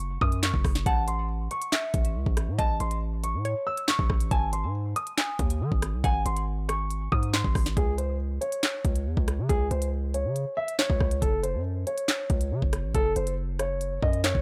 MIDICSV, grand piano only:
0, 0, Header, 1, 2, 480
1, 0, Start_track
1, 0, Tempo, 431655
1, 957, Time_signature, 4, 2, 24, 8
1, 16032, End_track
2, 0, Start_track
2, 0, Title_t, "Grand piano"
2, 0, Program_c, 0, 0
2, 0, Note_on_c, 0, 85, 72
2, 208, Note_off_c, 0, 85, 0
2, 241, Note_on_c, 0, 87, 93
2, 426, Note_off_c, 0, 87, 0
2, 477, Note_on_c, 0, 85, 81
2, 928, Note_off_c, 0, 85, 0
2, 960, Note_on_c, 0, 81, 103
2, 1145, Note_off_c, 0, 81, 0
2, 1197, Note_on_c, 0, 84, 78
2, 1384, Note_off_c, 0, 84, 0
2, 1681, Note_on_c, 0, 85, 80
2, 2834, Note_off_c, 0, 85, 0
2, 2879, Note_on_c, 0, 81, 107
2, 3065, Note_off_c, 0, 81, 0
2, 3117, Note_on_c, 0, 84, 83
2, 3304, Note_off_c, 0, 84, 0
2, 3599, Note_on_c, 0, 85, 75
2, 4049, Note_off_c, 0, 85, 0
2, 4077, Note_on_c, 0, 88, 88
2, 4264, Note_off_c, 0, 88, 0
2, 4317, Note_on_c, 0, 85, 78
2, 4768, Note_off_c, 0, 85, 0
2, 4795, Note_on_c, 0, 80, 100
2, 4983, Note_off_c, 0, 80, 0
2, 5036, Note_on_c, 0, 84, 74
2, 5223, Note_off_c, 0, 84, 0
2, 5517, Note_on_c, 0, 87, 75
2, 6672, Note_off_c, 0, 87, 0
2, 6723, Note_on_c, 0, 80, 108
2, 6907, Note_off_c, 0, 80, 0
2, 6958, Note_on_c, 0, 84, 76
2, 7144, Note_off_c, 0, 84, 0
2, 7436, Note_on_c, 0, 85, 80
2, 7888, Note_off_c, 0, 85, 0
2, 7919, Note_on_c, 0, 87, 91
2, 8105, Note_off_c, 0, 87, 0
2, 8157, Note_on_c, 0, 84, 87
2, 8608, Note_off_c, 0, 84, 0
2, 8637, Note_on_c, 0, 68, 91
2, 8824, Note_off_c, 0, 68, 0
2, 8874, Note_on_c, 0, 72, 72
2, 9062, Note_off_c, 0, 72, 0
2, 9353, Note_on_c, 0, 73, 73
2, 10510, Note_off_c, 0, 73, 0
2, 10555, Note_on_c, 0, 68, 106
2, 10743, Note_off_c, 0, 68, 0
2, 10799, Note_on_c, 0, 72, 73
2, 10985, Note_off_c, 0, 72, 0
2, 11278, Note_on_c, 0, 73, 72
2, 11729, Note_off_c, 0, 73, 0
2, 11753, Note_on_c, 0, 76, 89
2, 11941, Note_off_c, 0, 76, 0
2, 11996, Note_on_c, 0, 73, 82
2, 12447, Note_off_c, 0, 73, 0
2, 12472, Note_on_c, 0, 69, 91
2, 12661, Note_off_c, 0, 69, 0
2, 12712, Note_on_c, 0, 72, 74
2, 12901, Note_off_c, 0, 72, 0
2, 13197, Note_on_c, 0, 73, 71
2, 14353, Note_off_c, 0, 73, 0
2, 14396, Note_on_c, 0, 69, 105
2, 14583, Note_off_c, 0, 69, 0
2, 14636, Note_on_c, 0, 72, 75
2, 14823, Note_off_c, 0, 72, 0
2, 15118, Note_on_c, 0, 73, 69
2, 15569, Note_off_c, 0, 73, 0
2, 15599, Note_on_c, 0, 75, 94
2, 15785, Note_off_c, 0, 75, 0
2, 15835, Note_on_c, 0, 73, 80
2, 16032, Note_off_c, 0, 73, 0
2, 16032, End_track
0, 0, End_of_file